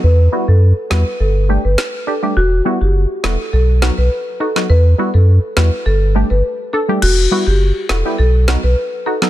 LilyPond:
<<
  \new Staff \with { instrumentName = "Marimba" } { \time 4/4 \key e \minor \tempo 4 = 103 b'8 r16 a'16 r8 b'16 r16 a'16 r8 b'16 r8 a'16 r16 | fis'8 r16 g'16 r4 a'16 r8 b'16 r8 a'16 r16 | b'8 r16 a'16 r8 b'16 r16 a'16 r8 b'16 r8 a'16 r16 | fis'8 r16 g'16 r4 a'16 r8 b'16 r8 a'16 r16 | }
  \new Staff \with { instrumentName = "Synth stab" } { \time 4/4 \key e \minor r8 <g b e' fis'>16 r8. <g b e' fis'>16 r8. <g a d' g'>16 r8. <d' g'>16 <g a d' g'>16 | r8 <g b e' fis'>16 r8. <g b e' fis'>16 r8. <fis b dis' fis'>16 r8. <dis' fis'>16 <fis b dis' fis'>16 | r8 <g b e' fis'>16 r8. <g b e' fis'>16 r8. <g a d' g'>16 r8. <d' a'>16 <g a d' g'>16 | r8 <g b e' fis'>16 r8. <e' fis'>16 <g b e' g'>16 r8 <fis b dis' fis'>16 r8. <dis' fis'>16 <fis b dis' a'>16 | }
  \new Staff \with { instrumentName = "Sub bass" } { \clef bass \time 4/4 \key e \minor e,8 r16 fis,8 r16 e,16 r16 g,,8. g,,16 r4 | e,,8 r16 fis,,8 r16 e,,16 r16 b,,8. b,,16 r4 | e,8 r16 fis,8 r16 e,16 r16 g,,8. g,,16 r4 | e,,8 r16 fis,,8 r16 e,,16 r16 b,,8. b,,16 r4 | }
  \new DrumStaff \with { instrumentName = "Drums" } \drummode { \time 4/4 r4 r8 sn8 r4 sn4 | r4 r8 sn8 r8 sn8 r8. sn16 | r4 r8 sn8 r4 r4 | cymc4 r8 sn8 r8 sn8 r8. sn16 | }
>>